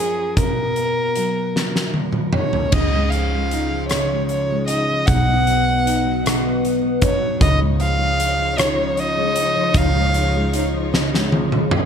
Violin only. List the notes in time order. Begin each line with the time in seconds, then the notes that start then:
0.00 G#4
0.38 A#4
2.35 C#5
2.73 D#5
3.10 F5
3.88 C#5
4.27 C#5
4.67 D#5
5.07 F#5
7.03 C#5
7.42 D#5
7.81 F5
8.59 C#5
9.00 D#5
9.77 F5